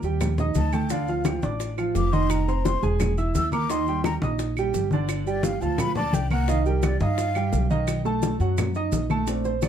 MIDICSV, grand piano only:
0, 0, Header, 1, 2, 480
1, 0, Start_track
1, 0, Tempo, 348635
1, 1246, Time_signature, 4, 2, 24, 8
1, 13334, End_track
2, 0, Start_track
2, 0, Title_t, "Grand piano"
2, 0, Program_c, 0, 0
2, 54, Note_on_c, 0, 67, 75
2, 56, Note_on_c, 0, 55, 70
2, 63, Note_on_c, 0, 79, 75
2, 444, Note_off_c, 0, 67, 0
2, 445, Note_off_c, 0, 55, 0
2, 450, Note_off_c, 0, 79, 0
2, 539, Note_on_c, 0, 63, 78
2, 549, Note_on_c, 0, 75, 77
2, 551, Note_on_c, 0, 87, 77
2, 928, Note_off_c, 0, 63, 0
2, 933, Note_off_c, 0, 75, 0
2, 935, Note_off_c, 0, 87, 0
2, 1012, Note_on_c, 0, 57, 77
2, 1017, Note_on_c, 0, 81, 75
2, 1018, Note_on_c, 0, 69, 75
2, 1207, Note_off_c, 0, 57, 0
2, 1210, Note_off_c, 0, 69, 0
2, 1210, Note_off_c, 0, 81, 0
2, 1256, Note_on_c, 0, 50, 79
2, 1258, Note_on_c, 0, 62, 78
2, 1261, Note_on_c, 0, 74, 82
2, 1449, Note_off_c, 0, 50, 0
2, 1450, Note_off_c, 0, 62, 0
2, 1452, Note_off_c, 0, 74, 0
2, 1495, Note_on_c, 0, 53, 71
2, 1500, Note_on_c, 0, 65, 73
2, 1502, Note_on_c, 0, 77, 77
2, 1886, Note_off_c, 0, 53, 0
2, 1889, Note_off_c, 0, 65, 0
2, 1890, Note_off_c, 0, 77, 0
2, 1968, Note_on_c, 0, 62, 71
2, 1974, Note_on_c, 0, 74, 69
2, 1980, Note_on_c, 0, 86, 73
2, 2362, Note_off_c, 0, 62, 0
2, 2366, Note_off_c, 0, 74, 0
2, 2369, Note_off_c, 0, 86, 0
2, 2445, Note_on_c, 0, 53, 78
2, 2453, Note_on_c, 0, 65, 79
2, 2456, Note_on_c, 0, 77, 76
2, 2841, Note_off_c, 0, 53, 0
2, 2846, Note_off_c, 0, 65, 0
2, 2847, Note_off_c, 0, 77, 0
2, 2923, Note_on_c, 0, 51, 84
2, 2927, Note_on_c, 0, 63, 83
2, 2932, Note_on_c, 0, 75, 85
2, 3320, Note_off_c, 0, 51, 0
2, 3322, Note_off_c, 0, 63, 0
2, 3325, Note_off_c, 0, 75, 0
2, 3414, Note_on_c, 0, 60, 75
2, 3420, Note_on_c, 0, 72, 72
2, 3424, Note_on_c, 0, 84, 76
2, 3807, Note_off_c, 0, 60, 0
2, 3810, Note_off_c, 0, 72, 0
2, 3813, Note_off_c, 0, 84, 0
2, 3889, Note_on_c, 0, 56, 74
2, 3896, Note_on_c, 0, 68, 77
2, 3900, Note_on_c, 0, 80, 73
2, 4284, Note_off_c, 0, 56, 0
2, 4288, Note_off_c, 0, 68, 0
2, 4291, Note_off_c, 0, 80, 0
2, 4374, Note_on_c, 0, 64, 80
2, 4377, Note_on_c, 0, 76, 78
2, 4381, Note_on_c, 0, 88, 79
2, 4767, Note_off_c, 0, 64, 0
2, 4769, Note_off_c, 0, 76, 0
2, 4771, Note_off_c, 0, 88, 0
2, 4851, Note_on_c, 0, 58, 75
2, 4857, Note_on_c, 0, 70, 74
2, 4857, Note_on_c, 0, 82, 71
2, 5049, Note_off_c, 0, 58, 0
2, 5052, Note_off_c, 0, 70, 0
2, 5052, Note_off_c, 0, 82, 0
2, 5097, Note_on_c, 0, 51, 83
2, 5100, Note_on_c, 0, 63, 79
2, 5104, Note_on_c, 0, 75, 83
2, 5292, Note_off_c, 0, 51, 0
2, 5294, Note_off_c, 0, 63, 0
2, 5296, Note_off_c, 0, 75, 0
2, 5346, Note_on_c, 0, 55, 75
2, 5350, Note_on_c, 0, 67, 74
2, 5350, Note_on_c, 0, 79, 77
2, 5734, Note_off_c, 0, 55, 0
2, 5737, Note_off_c, 0, 67, 0
2, 5737, Note_off_c, 0, 79, 0
2, 5820, Note_on_c, 0, 63, 74
2, 5829, Note_on_c, 0, 75, 73
2, 5831, Note_on_c, 0, 87, 75
2, 6211, Note_off_c, 0, 63, 0
2, 6216, Note_off_c, 0, 75, 0
2, 6217, Note_off_c, 0, 87, 0
2, 6308, Note_on_c, 0, 55, 79
2, 6315, Note_on_c, 0, 67, 79
2, 6317, Note_on_c, 0, 79, 80
2, 6696, Note_off_c, 0, 55, 0
2, 6699, Note_off_c, 0, 67, 0
2, 6701, Note_off_c, 0, 79, 0
2, 6784, Note_on_c, 0, 50, 84
2, 6788, Note_on_c, 0, 62, 82
2, 6791, Note_on_c, 0, 74, 87
2, 7173, Note_off_c, 0, 50, 0
2, 7176, Note_off_c, 0, 62, 0
2, 7177, Note_off_c, 0, 74, 0
2, 7251, Note_on_c, 0, 55, 76
2, 7258, Note_on_c, 0, 67, 72
2, 7260, Note_on_c, 0, 79, 79
2, 7646, Note_off_c, 0, 55, 0
2, 7650, Note_off_c, 0, 67, 0
2, 7650, Note_off_c, 0, 79, 0
2, 7737, Note_on_c, 0, 53, 78
2, 7744, Note_on_c, 0, 65, 76
2, 7750, Note_on_c, 0, 77, 73
2, 8129, Note_off_c, 0, 53, 0
2, 8133, Note_off_c, 0, 65, 0
2, 8136, Note_off_c, 0, 77, 0
2, 8209, Note_on_c, 0, 62, 80
2, 8218, Note_on_c, 0, 74, 83
2, 8221, Note_on_c, 0, 86, 79
2, 8604, Note_off_c, 0, 62, 0
2, 8609, Note_off_c, 0, 74, 0
2, 8611, Note_off_c, 0, 86, 0
2, 8685, Note_on_c, 0, 58, 82
2, 8690, Note_on_c, 0, 70, 81
2, 8694, Note_on_c, 0, 82, 79
2, 8885, Note_off_c, 0, 58, 0
2, 8888, Note_off_c, 0, 70, 0
2, 8890, Note_off_c, 0, 82, 0
2, 8928, Note_on_c, 0, 51, 84
2, 8930, Note_on_c, 0, 63, 85
2, 8931, Note_on_c, 0, 75, 85
2, 9126, Note_off_c, 0, 51, 0
2, 9127, Note_off_c, 0, 63, 0
2, 9128, Note_off_c, 0, 75, 0
2, 9168, Note_on_c, 0, 55, 77
2, 9171, Note_on_c, 0, 67, 76
2, 9175, Note_on_c, 0, 79, 80
2, 9563, Note_off_c, 0, 55, 0
2, 9564, Note_off_c, 0, 67, 0
2, 9567, Note_off_c, 0, 79, 0
2, 9655, Note_on_c, 0, 63, 74
2, 9659, Note_on_c, 0, 75, 74
2, 9667, Note_on_c, 0, 87, 75
2, 10046, Note_off_c, 0, 63, 0
2, 10049, Note_off_c, 0, 75, 0
2, 10053, Note_off_c, 0, 87, 0
2, 10126, Note_on_c, 0, 55, 84
2, 10130, Note_on_c, 0, 67, 79
2, 10137, Note_on_c, 0, 79, 80
2, 10521, Note_off_c, 0, 55, 0
2, 10524, Note_off_c, 0, 67, 0
2, 10527, Note_off_c, 0, 79, 0
2, 10607, Note_on_c, 0, 51, 83
2, 10607, Note_on_c, 0, 63, 91
2, 10610, Note_on_c, 0, 75, 90
2, 11001, Note_off_c, 0, 51, 0
2, 11001, Note_off_c, 0, 63, 0
2, 11003, Note_off_c, 0, 75, 0
2, 11083, Note_on_c, 0, 57, 80
2, 11089, Note_on_c, 0, 69, 80
2, 11092, Note_on_c, 0, 81, 78
2, 11478, Note_off_c, 0, 57, 0
2, 11482, Note_off_c, 0, 69, 0
2, 11484, Note_off_c, 0, 81, 0
2, 11572, Note_on_c, 0, 66, 79
2, 11573, Note_on_c, 0, 54, 78
2, 11579, Note_on_c, 0, 78, 76
2, 11964, Note_off_c, 0, 54, 0
2, 11964, Note_off_c, 0, 66, 0
2, 11967, Note_off_c, 0, 78, 0
2, 12058, Note_on_c, 0, 63, 82
2, 12061, Note_on_c, 0, 75, 80
2, 12062, Note_on_c, 0, 87, 80
2, 12447, Note_off_c, 0, 63, 0
2, 12449, Note_off_c, 0, 75, 0
2, 12449, Note_off_c, 0, 87, 0
2, 12526, Note_on_c, 0, 57, 78
2, 12531, Note_on_c, 0, 69, 74
2, 12538, Note_on_c, 0, 81, 78
2, 12723, Note_off_c, 0, 57, 0
2, 12726, Note_off_c, 0, 69, 0
2, 12730, Note_off_c, 0, 81, 0
2, 12766, Note_on_c, 0, 57, 58
2, 12771, Note_on_c, 0, 60, 50
2, 12780, Note_on_c, 0, 62, 61
2, 13012, Note_on_c, 0, 72, 75
2, 13086, Note_off_c, 0, 57, 0
2, 13088, Note_off_c, 0, 60, 0
2, 13093, Note_off_c, 0, 62, 0
2, 13242, Note_off_c, 0, 72, 0
2, 13262, Note_on_c, 0, 74, 77
2, 13334, Note_off_c, 0, 74, 0
2, 13334, End_track
0, 0, End_of_file